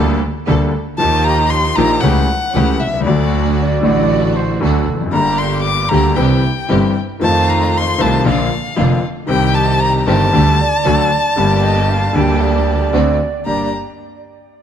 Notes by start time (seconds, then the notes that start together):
Already playing: D2 D3 G3 A#3 D4 G4 A4
0.47 D2 D3 G3 A#3 D4 G4 A4
0.98 D#2 D#3 F3 A#3 D#4 F4 G4 A5
1.02 G4
1.24 A#5
1.50 C6
1.76 A#1 A#2 F3 A#3 D#4 F4 G4 A#5
2.01 C#2 C#3 E3 A3 C#4 G4 F#5
2.54 C#2 C#3 E3 A3 C#4 G4
2.79 C2 E5
2.87 B1
2.94 C2
3.00 C#2
3.05 D2 D3 F#3 A3 D4 F#4 D5
3.59 D5
3.81 A1 A2 D3 F#3 A3 F#4
3.85 D4 F#4
4.36 C5
4.60 D2 D3 F#3 A3 D4 F#4 A4
4.88 F1
4.94 E2
5.01 F2
5.06 F#2
5.11 G1 G2 D3 G3 A#3 D4 G4 A#5
5.15 G4
5.38 C6
5.63 D6
5.89 D2 D3 G3 A#3 D4 G4 A#5
5.93 D2
6.16 C2 C3 E3 G3 C4 E4 G4 G5
6.69 G1 G2 E3 G3 C4 E4 G4
7.19 F2 D#3 F3 A3 C4 D#4 F4 A5
7.23 F2 F4
7.50 A#5
7.77 C6
7.98 C2 C3 D#3 A3 C4 D#4 F4 A5
8.25 A#1 A#2 D3 F3 A#3 D4 F4 F5
8.76 F1 F2 D3 F3 A#3 D4 F4
9.26 C2 C3 D#3 G3 C4 D#4 G4 G5
9.54 A5
9.79 A#5
9.98 A#5
10.06 G1 G2 D#3 G3 C4 D#4 G4 A5
10.33 D2 D3 G3 A3 D4 G4
10.60 D5
10.85 D2 D3 F#3 A3 D4 F#4
11.36 G1 G2 D3 G3 A#3 D4 G4
11.63 D#5
11.90 F5
12.13 D2 D3 G3 A#3 D4 G4 G5
12.17 G4
12.41 D5
12.93 D2 D3 A3 C4 D4 F#4
13.45 G1 G2 A#3 D4 G4 D5 A#5